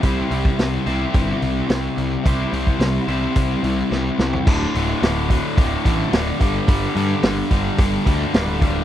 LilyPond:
<<
  \new Staff \with { instrumentName = "Distorted electric guitar" } { \clef bass \time 4/4 \key c \major \tempo 4 = 108 <c g c' e' g' c''>4. <c g c' e' g' c''>2~ <c g c' e' g' c''>8 | <c g c' e' g' c''>4. <c g c' e' g' c''>2~ <c g c' e' g' c''>8 | <d, a, d>8 <d, a, d>8 <d, a, d>8 <d, a, d>8 <d, a, d>8 <d, a, d>8 <d, a, d>8 <g, d g>8 | <g, d g>8 <g, d g>8 <g, d g>8 <g, d g>8 <g, d g>8 <g, d g>8 <g, d g>8 <g, d g>8 | }
  \new Staff \with { instrumentName = "Picked electric bass" } { \clef bass \time 4/4 \key c \major c,8 c,8 c,8 c,8 g,,8 c,8 c,8 c,8 | c,8 c,8 c,8 c,8 c,8 c,8 c,8 c,8 | d,,8 d,,8 d,,4 d,,8 a,,8 d,,8 g,,8 | g,,8 g,8 g,,8 g,,8 g,,8 d,8 d,,4 | }
  \new DrumStaff \with { instrumentName = "Drums" } \drummode { \time 4/4 <hho bd>8 hho16 bd16 <hho sn>8 <hho sn>8 <hho bd>8 hho8 <hho sn>8 hho8 | <hho bd>8 hho16 bd16 <hho sn>8 hho8 <hho bd>8 hho8 sn8 sn16 tomfh16 | <cymc bd>8 hho8 <hho sn>8 <hho bd>8 <hho bd>8 <hho bd>8 <hho sn>8 <hho bd>8 | <hho bd>8 hho8 <hho sn>8 <hho bd>8 <hho bd>8 <hho bd>8 <hho sn>8 <hho bd>8 | }
>>